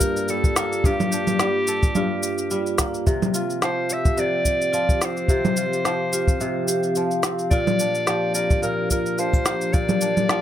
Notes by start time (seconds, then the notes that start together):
Already playing: G2 G3 A#3 D4 F4 G4 A#4 D5 A5
0.01 kick, shaker
0.17 shaker
0.28 G3 A4, shaker
0.44 kick, shaker
0.56 A#3 F4, snare, shaker
0.73 shaker
0.84 G2 G4, kick, shaker
1.00 low conga, shaker
1.12 D4 G4, shaker
1.27 low conga, shaker
1.39 G3, snare, shaker
1.67 A4, shaker
1.83 kick, shaker
1.95 G2 F4, low conga, shaker
2.23 shaker
2.38 shaker
2.51 G3 F4, shaker
2.67 shaker
2.78 A#3, kick, snare, shaker
2.94 shaker
3.06 C3 F3, kick, shaker
3.22 low conga, shaker
3.34 F4, shaker
3.44 G4
3.49 C4, shaker
3.62 F3 C5, snare, shaker
3.89 G4 E5, shaker
4.05 kick, shaker
4.17 C3 D5, shaker
4.45 F5, kick, shaker
4.62 shaker
4.72 F3 F4, shaker
4.89 kick, shaker
5.02 C4 C5, snare, shaker
5.17 shaker
5.28 C3 G4, kick, shaker
5.45 low conga, shaker
5.57 F4, shaker
5.73 shaker
5.85 F3, snare, shaker
6.13 F4 G4, shaker
6.28 kick, shaker
6.40 C3, shaker
6.68 G4, shaker
6.83 shaker
6.96 F3, shaker
7.11 shaker
7.23 C4, snare, shaker
7.39 shaker
7.51 A#2 F4 D5, kick, shaker
7.67 low conga, shaker
7.73 D4
7.79 D4, shaker
7.95 shaker
8.07 F3 G4, snare, shaker
8.12 A#4
8.34 A#4 D5, shaker
8.51 kick, shaker
8.62 A#2 A#4, shaker
8.91 F4 A#4, kick, shaker
9.06 shaker
9.18 F3 C5, shaker
9.33 kick, shaker
9.46 A#3 G4, snare, shaker
9.61 shaker
9.73 A#2 D5, kick, shaker
9.89 low conga, shaker
10.01 D4, shaker
10.17 low conga, shaker
10.29 F3 F4, snare, shaker